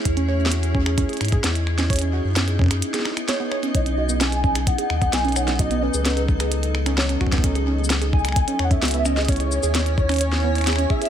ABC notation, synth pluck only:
X:1
M:4/4
L:1/16
Q:1/4=130
K:C#m
V:1 name="Synth pluck"
z C c C F z C G C G z G z3 C | c C F z C G C G z G z2 c B, c C | c C F B, C G C G z G z3 C c C | F B, C G C G z G z3 C c C F B, |
C G C G z G z3 C c C F B, C G | C G z G z3 C c C B, z G C G G |]